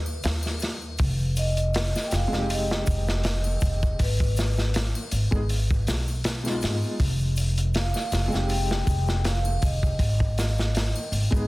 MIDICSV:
0, 0, Header, 1, 5, 480
1, 0, Start_track
1, 0, Key_signature, -4, "minor"
1, 0, Tempo, 750000
1, 638, Time_signature, 4, 2, 24, 8
1, 7343, End_track
2, 0, Start_track
2, 0, Title_t, "Vibraphone"
2, 0, Program_c, 0, 11
2, 885, Note_on_c, 0, 75, 107
2, 1324, Note_on_c, 0, 79, 72
2, 1334, Note_off_c, 0, 75, 0
2, 1361, Note_off_c, 0, 79, 0
2, 1367, Note_on_c, 0, 77, 101
2, 1609, Note_off_c, 0, 77, 0
2, 1610, Note_on_c, 0, 75, 94
2, 2573, Note_on_c, 0, 71, 81
2, 2593, Note_off_c, 0, 75, 0
2, 3020, Note_off_c, 0, 71, 0
2, 4979, Note_on_c, 0, 77, 96
2, 5453, Note_on_c, 0, 79, 103
2, 5462, Note_off_c, 0, 77, 0
2, 5900, Note_off_c, 0, 79, 0
2, 5938, Note_on_c, 0, 77, 90
2, 6166, Note_on_c, 0, 75, 75
2, 6175, Note_off_c, 0, 77, 0
2, 7096, Note_off_c, 0, 75, 0
2, 7343, End_track
3, 0, Start_track
3, 0, Title_t, "Felt piano"
3, 0, Program_c, 1, 0
3, 1457, Note_on_c, 1, 56, 76
3, 1481, Note_on_c, 1, 60, 70
3, 1500, Note_on_c, 1, 63, 70
3, 1520, Note_on_c, 1, 67, 87
3, 2529, Note_off_c, 1, 56, 0
3, 2540, Note_off_c, 1, 60, 0
3, 2550, Note_off_c, 1, 63, 0
3, 2560, Note_off_c, 1, 67, 0
3, 3398, Note_on_c, 1, 56, 75
3, 3408, Note_on_c, 1, 59, 62
3, 3420, Note_on_c, 1, 63, 71
3, 3429, Note_on_c, 1, 68, 84
3, 3463, Note_off_c, 1, 56, 0
3, 3468, Note_off_c, 1, 59, 0
3, 3474, Note_off_c, 1, 63, 0
3, 3478, Note_off_c, 1, 68, 0
3, 4117, Note_on_c, 1, 56, 62
3, 4128, Note_on_c, 1, 59, 60
3, 4137, Note_on_c, 1, 63, 64
3, 4150, Note_on_c, 1, 65, 71
3, 4459, Note_off_c, 1, 56, 0
3, 4464, Note_off_c, 1, 59, 0
3, 4469, Note_off_c, 1, 63, 0
3, 4475, Note_off_c, 1, 65, 0
3, 5299, Note_on_c, 1, 56, 77
3, 5318, Note_on_c, 1, 60, 68
3, 5340, Note_on_c, 1, 63, 69
3, 5360, Note_on_c, 1, 67, 85
3, 6370, Note_off_c, 1, 56, 0
3, 6379, Note_off_c, 1, 60, 0
3, 6390, Note_off_c, 1, 63, 0
3, 6400, Note_off_c, 1, 67, 0
3, 7236, Note_on_c, 1, 56, 74
3, 7247, Note_on_c, 1, 59, 72
3, 7257, Note_on_c, 1, 63, 66
3, 7266, Note_on_c, 1, 68, 84
3, 7302, Note_off_c, 1, 56, 0
3, 7307, Note_off_c, 1, 59, 0
3, 7312, Note_off_c, 1, 63, 0
3, 7316, Note_off_c, 1, 68, 0
3, 7343, End_track
4, 0, Start_track
4, 0, Title_t, "Upright bass"
4, 0, Program_c, 2, 32
4, 0, Note_on_c, 2, 39, 79
4, 130, Note_off_c, 2, 39, 0
4, 156, Note_on_c, 2, 39, 86
4, 616, Note_off_c, 2, 39, 0
4, 636, Note_on_c, 2, 29, 93
4, 1223, Note_off_c, 2, 29, 0
4, 1358, Note_on_c, 2, 29, 94
4, 1474, Note_off_c, 2, 29, 0
4, 1487, Note_on_c, 2, 29, 80
4, 1816, Note_off_c, 2, 29, 0
4, 1841, Note_on_c, 2, 29, 86
4, 2298, Note_off_c, 2, 29, 0
4, 2318, Note_on_c, 2, 29, 84
4, 2532, Note_off_c, 2, 29, 0
4, 2557, Note_on_c, 2, 32, 95
4, 3144, Note_off_c, 2, 32, 0
4, 3278, Note_on_c, 2, 32, 87
4, 3394, Note_off_c, 2, 32, 0
4, 3408, Note_on_c, 2, 32, 79
4, 3736, Note_off_c, 2, 32, 0
4, 3758, Note_on_c, 2, 35, 91
4, 4240, Note_on_c, 2, 44, 81
4, 4250, Note_off_c, 2, 35, 0
4, 4355, Note_off_c, 2, 44, 0
4, 4477, Note_on_c, 2, 29, 99
4, 5064, Note_off_c, 2, 29, 0
4, 5197, Note_on_c, 2, 29, 89
4, 5313, Note_off_c, 2, 29, 0
4, 5335, Note_on_c, 2, 29, 78
4, 5660, Note_off_c, 2, 29, 0
4, 5677, Note_on_c, 2, 29, 92
4, 6137, Note_off_c, 2, 29, 0
4, 6160, Note_on_c, 2, 29, 79
4, 6373, Note_off_c, 2, 29, 0
4, 6395, Note_on_c, 2, 32, 97
4, 6983, Note_off_c, 2, 32, 0
4, 7116, Note_on_c, 2, 32, 87
4, 7233, Note_off_c, 2, 32, 0
4, 7246, Note_on_c, 2, 32, 83
4, 7343, Note_off_c, 2, 32, 0
4, 7343, End_track
5, 0, Start_track
5, 0, Title_t, "Drums"
5, 39, Note_on_c, 9, 81, 59
5, 43, Note_on_c, 9, 82, 33
5, 103, Note_off_c, 9, 81, 0
5, 107, Note_off_c, 9, 82, 0
5, 146, Note_on_c, 9, 82, 54
5, 152, Note_on_c, 9, 46, 81
5, 163, Note_on_c, 9, 38, 112
5, 210, Note_off_c, 9, 82, 0
5, 216, Note_off_c, 9, 46, 0
5, 227, Note_off_c, 9, 38, 0
5, 273, Note_on_c, 9, 82, 25
5, 274, Note_on_c, 9, 81, 82
5, 295, Note_on_c, 9, 38, 37
5, 337, Note_off_c, 9, 82, 0
5, 338, Note_off_c, 9, 81, 0
5, 359, Note_off_c, 9, 38, 0
5, 383, Note_on_c, 9, 82, 90
5, 398, Note_on_c, 9, 46, 64
5, 405, Note_on_c, 9, 38, 46
5, 447, Note_off_c, 9, 82, 0
5, 462, Note_off_c, 9, 46, 0
5, 469, Note_off_c, 9, 38, 0
5, 519, Note_on_c, 9, 82, 36
5, 583, Note_off_c, 9, 82, 0
5, 625, Note_on_c, 9, 82, 55
5, 631, Note_on_c, 9, 46, 73
5, 637, Note_on_c, 9, 36, 105
5, 689, Note_off_c, 9, 82, 0
5, 695, Note_off_c, 9, 46, 0
5, 701, Note_off_c, 9, 36, 0
5, 766, Note_on_c, 9, 82, 24
5, 830, Note_off_c, 9, 82, 0
5, 871, Note_on_c, 9, 82, 95
5, 875, Note_on_c, 9, 46, 63
5, 935, Note_off_c, 9, 82, 0
5, 939, Note_off_c, 9, 46, 0
5, 1003, Note_on_c, 9, 82, 43
5, 1005, Note_on_c, 9, 42, 41
5, 1067, Note_off_c, 9, 82, 0
5, 1069, Note_off_c, 9, 42, 0
5, 1113, Note_on_c, 9, 82, 55
5, 1116, Note_on_c, 9, 46, 84
5, 1125, Note_on_c, 9, 38, 105
5, 1177, Note_off_c, 9, 82, 0
5, 1180, Note_off_c, 9, 46, 0
5, 1189, Note_off_c, 9, 38, 0
5, 1250, Note_on_c, 9, 82, 24
5, 1251, Note_on_c, 9, 81, 75
5, 1255, Note_on_c, 9, 38, 36
5, 1314, Note_off_c, 9, 82, 0
5, 1315, Note_off_c, 9, 81, 0
5, 1319, Note_off_c, 9, 38, 0
5, 1352, Note_on_c, 9, 46, 68
5, 1354, Note_on_c, 9, 82, 97
5, 1360, Note_on_c, 9, 38, 51
5, 1416, Note_off_c, 9, 46, 0
5, 1418, Note_off_c, 9, 82, 0
5, 1424, Note_off_c, 9, 38, 0
5, 1487, Note_on_c, 9, 82, 35
5, 1492, Note_on_c, 9, 38, 34
5, 1551, Note_off_c, 9, 82, 0
5, 1556, Note_off_c, 9, 38, 0
5, 1597, Note_on_c, 9, 82, 49
5, 1600, Note_on_c, 9, 46, 88
5, 1661, Note_off_c, 9, 82, 0
5, 1664, Note_off_c, 9, 46, 0
5, 1730, Note_on_c, 9, 82, 24
5, 1737, Note_on_c, 9, 38, 57
5, 1794, Note_off_c, 9, 82, 0
5, 1801, Note_off_c, 9, 38, 0
5, 1832, Note_on_c, 9, 82, 94
5, 1836, Note_on_c, 9, 46, 62
5, 1839, Note_on_c, 9, 36, 94
5, 1896, Note_off_c, 9, 82, 0
5, 1900, Note_off_c, 9, 46, 0
5, 1903, Note_off_c, 9, 36, 0
5, 1966, Note_on_c, 9, 82, 36
5, 1974, Note_on_c, 9, 38, 50
5, 2030, Note_off_c, 9, 82, 0
5, 2038, Note_off_c, 9, 38, 0
5, 2070, Note_on_c, 9, 46, 74
5, 2078, Note_on_c, 9, 82, 50
5, 2079, Note_on_c, 9, 38, 112
5, 2134, Note_off_c, 9, 46, 0
5, 2142, Note_off_c, 9, 82, 0
5, 2143, Note_off_c, 9, 38, 0
5, 2202, Note_on_c, 9, 81, 74
5, 2202, Note_on_c, 9, 82, 25
5, 2266, Note_off_c, 9, 81, 0
5, 2266, Note_off_c, 9, 82, 0
5, 2310, Note_on_c, 9, 82, 94
5, 2317, Note_on_c, 9, 36, 94
5, 2317, Note_on_c, 9, 46, 71
5, 2374, Note_off_c, 9, 82, 0
5, 2381, Note_off_c, 9, 36, 0
5, 2381, Note_off_c, 9, 46, 0
5, 2446, Note_on_c, 9, 82, 40
5, 2451, Note_on_c, 9, 36, 89
5, 2510, Note_off_c, 9, 82, 0
5, 2515, Note_off_c, 9, 36, 0
5, 2555, Note_on_c, 9, 46, 94
5, 2558, Note_on_c, 9, 36, 105
5, 2558, Note_on_c, 9, 82, 51
5, 2619, Note_off_c, 9, 46, 0
5, 2622, Note_off_c, 9, 36, 0
5, 2622, Note_off_c, 9, 82, 0
5, 2690, Note_on_c, 9, 36, 93
5, 2692, Note_on_c, 9, 82, 26
5, 2754, Note_off_c, 9, 36, 0
5, 2756, Note_off_c, 9, 82, 0
5, 2795, Note_on_c, 9, 82, 100
5, 2798, Note_on_c, 9, 46, 62
5, 2809, Note_on_c, 9, 38, 53
5, 2859, Note_off_c, 9, 82, 0
5, 2862, Note_off_c, 9, 46, 0
5, 2873, Note_off_c, 9, 38, 0
5, 2927, Note_on_c, 9, 82, 39
5, 2934, Note_on_c, 9, 38, 39
5, 2991, Note_off_c, 9, 82, 0
5, 2998, Note_off_c, 9, 38, 0
5, 3033, Note_on_c, 9, 46, 90
5, 3036, Note_on_c, 9, 82, 47
5, 3047, Note_on_c, 9, 38, 113
5, 3097, Note_off_c, 9, 46, 0
5, 3100, Note_off_c, 9, 82, 0
5, 3111, Note_off_c, 9, 38, 0
5, 3169, Note_on_c, 9, 81, 68
5, 3173, Note_on_c, 9, 82, 23
5, 3233, Note_off_c, 9, 81, 0
5, 3237, Note_off_c, 9, 82, 0
5, 3273, Note_on_c, 9, 46, 62
5, 3277, Note_on_c, 9, 82, 96
5, 3337, Note_off_c, 9, 46, 0
5, 3341, Note_off_c, 9, 82, 0
5, 3404, Note_on_c, 9, 82, 38
5, 3406, Note_on_c, 9, 36, 87
5, 3468, Note_off_c, 9, 82, 0
5, 3470, Note_off_c, 9, 36, 0
5, 3516, Note_on_c, 9, 46, 73
5, 3517, Note_on_c, 9, 82, 49
5, 3580, Note_off_c, 9, 46, 0
5, 3581, Note_off_c, 9, 82, 0
5, 3649, Note_on_c, 9, 82, 24
5, 3652, Note_on_c, 9, 36, 92
5, 3713, Note_off_c, 9, 82, 0
5, 3716, Note_off_c, 9, 36, 0
5, 3757, Note_on_c, 9, 46, 65
5, 3760, Note_on_c, 9, 82, 81
5, 3765, Note_on_c, 9, 38, 54
5, 3821, Note_off_c, 9, 46, 0
5, 3824, Note_off_c, 9, 82, 0
5, 3829, Note_off_c, 9, 38, 0
5, 3885, Note_on_c, 9, 82, 34
5, 3891, Note_on_c, 9, 81, 51
5, 3949, Note_off_c, 9, 82, 0
5, 3955, Note_off_c, 9, 81, 0
5, 3995, Note_on_c, 9, 46, 81
5, 3999, Note_on_c, 9, 82, 56
5, 4001, Note_on_c, 9, 38, 112
5, 4059, Note_off_c, 9, 46, 0
5, 4063, Note_off_c, 9, 82, 0
5, 4065, Note_off_c, 9, 38, 0
5, 4126, Note_on_c, 9, 82, 27
5, 4127, Note_on_c, 9, 81, 77
5, 4137, Note_on_c, 9, 38, 39
5, 4190, Note_off_c, 9, 82, 0
5, 4191, Note_off_c, 9, 81, 0
5, 4201, Note_off_c, 9, 38, 0
5, 4233, Note_on_c, 9, 82, 80
5, 4241, Note_on_c, 9, 46, 64
5, 4249, Note_on_c, 9, 38, 50
5, 4297, Note_off_c, 9, 82, 0
5, 4305, Note_off_c, 9, 46, 0
5, 4313, Note_off_c, 9, 38, 0
5, 4364, Note_on_c, 9, 82, 34
5, 4428, Note_off_c, 9, 82, 0
5, 4478, Note_on_c, 9, 36, 103
5, 4479, Note_on_c, 9, 82, 47
5, 4480, Note_on_c, 9, 46, 80
5, 4542, Note_off_c, 9, 36, 0
5, 4543, Note_off_c, 9, 82, 0
5, 4544, Note_off_c, 9, 46, 0
5, 4600, Note_on_c, 9, 82, 26
5, 4664, Note_off_c, 9, 82, 0
5, 4711, Note_on_c, 9, 82, 90
5, 4720, Note_on_c, 9, 46, 67
5, 4775, Note_off_c, 9, 82, 0
5, 4784, Note_off_c, 9, 46, 0
5, 4846, Note_on_c, 9, 82, 36
5, 4848, Note_on_c, 9, 42, 44
5, 4910, Note_off_c, 9, 82, 0
5, 4912, Note_off_c, 9, 42, 0
5, 4952, Note_on_c, 9, 82, 46
5, 4957, Note_on_c, 9, 46, 77
5, 4964, Note_on_c, 9, 38, 112
5, 5016, Note_off_c, 9, 82, 0
5, 5021, Note_off_c, 9, 46, 0
5, 5028, Note_off_c, 9, 38, 0
5, 5082, Note_on_c, 9, 81, 73
5, 5082, Note_on_c, 9, 82, 25
5, 5094, Note_on_c, 9, 38, 37
5, 5146, Note_off_c, 9, 81, 0
5, 5146, Note_off_c, 9, 82, 0
5, 5158, Note_off_c, 9, 38, 0
5, 5194, Note_on_c, 9, 82, 83
5, 5197, Note_on_c, 9, 46, 72
5, 5206, Note_on_c, 9, 38, 56
5, 5258, Note_off_c, 9, 82, 0
5, 5261, Note_off_c, 9, 46, 0
5, 5270, Note_off_c, 9, 38, 0
5, 5322, Note_on_c, 9, 82, 35
5, 5339, Note_on_c, 9, 38, 36
5, 5386, Note_off_c, 9, 82, 0
5, 5403, Note_off_c, 9, 38, 0
5, 5432, Note_on_c, 9, 82, 47
5, 5438, Note_on_c, 9, 46, 83
5, 5496, Note_off_c, 9, 82, 0
5, 5502, Note_off_c, 9, 46, 0
5, 5564, Note_on_c, 9, 82, 22
5, 5575, Note_on_c, 9, 38, 55
5, 5628, Note_off_c, 9, 82, 0
5, 5639, Note_off_c, 9, 38, 0
5, 5677, Note_on_c, 9, 36, 85
5, 5677, Note_on_c, 9, 46, 69
5, 5677, Note_on_c, 9, 82, 76
5, 5741, Note_off_c, 9, 36, 0
5, 5741, Note_off_c, 9, 46, 0
5, 5741, Note_off_c, 9, 82, 0
5, 5804, Note_on_c, 9, 82, 37
5, 5815, Note_on_c, 9, 38, 49
5, 5868, Note_off_c, 9, 82, 0
5, 5879, Note_off_c, 9, 38, 0
5, 5916, Note_on_c, 9, 46, 76
5, 5918, Note_on_c, 9, 82, 51
5, 5921, Note_on_c, 9, 38, 100
5, 5980, Note_off_c, 9, 46, 0
5, 5982, Note_off_c, 9, 82, 0
5, 5985, Note_off_c, 9, 38, 0
5, 6047, Note_on_c, 9, 81, 81
5, 6050, Note_on_c, 9, 82, 26
5, 6111, Note_off_c, 9, 81, 0
5, 6114, Note_off_c, 9, 82, 0
5, 6156, Note_on_c, 9, 46, 68
5, 6161, Note_on_c, 9, 36, 97
5, 6161, Note_on_c, 9, 82, 80
5, 6220, Note_off_c, 9, 46, 0
5, 6225, Note_off_c, 9, 36, 0
5, 6225, Note_off_c, 9, 82, 0
5, 6291, Note_on_c, 9, 36, 89
5, 6295, Note_on_c, 9, 82, 33
5, 6355, Note_off_c, 9, 36, 0
5, 6359, Note_off_c, 9, 82, 0
5, 6394, Note_on_c, 9, 36, 100
5, 6395, Note_on_c, 9, 46, 80
5, 6399, Note_on_c, 9, 82, 45
5, 6458, Note_off_c, 9, 36, 0
5, 6459, Note_off_c, 9, 46, 0
5, 6463, Note_off_c, 9, 82, 0
5, 6529, Note_on_c, 9, 36, 90
5, 6530, Note_on_c, 9, 82, 22
5, 6593, Note_off_c, 9, 36, 0
5, 6594, Note_off_c, 9, 82, 0
5, 6642, Note_on_c, 9, 46, 66
5, 6644, Note_on_c, 9, 82, 80
5, 6647, Note_on_c, 9, 38, 53
5, 6706, Note_off_c, 9, 46, 0
5, 6708, Note_off_c, 9, 82, 0
5, 6711, Note_off_c, 9, 38, 0
5, 6768, Note_on_c, 9, 82, 35
5, 6780, Note_on_c, 9, 38, 42
5, 6832, Note_off_c, 9, 82, 0
5, 6844, Note_off_c, 9, 38, 0
5, 6878, Note_on_c, 9, 46, 84
5, 6885, Note_on_c, 9, 82, 51
5, 6892, Note_on_c, 9, 38, 104
5, 6942, Note_off_c, 9, 46, 0
5, 6949, Note_off_c, 9, 82, 0
5, 6956, Note_off_c, 9, 38, 0
5, 7012, Note_on_c, 9, 81, 76
5, 7013, Note_on_c, 9, 82, 23
5, 7076, Note_off_c, 9, 81, 0
5, 7077, Note_off_c, 9, 82, 0
5, 7120, Note_on_c, 9, 82, 79
5, 7121, Note_on_c, 9, 46, 67
5, 7184, Note_off_c, 9, 82, 0
5, 7185, Note_off_c, 9, 46, 0
5, 7247, Note_on_c, 9, 36, 95
5, 7257, Note_on_c, 9, 82, 37
5, 7311, Note_off_c, 9, 36, 0
5, 7321, Note_off_c, 9, 82, 0
5, 7343, End_track
0, 0, End_of_file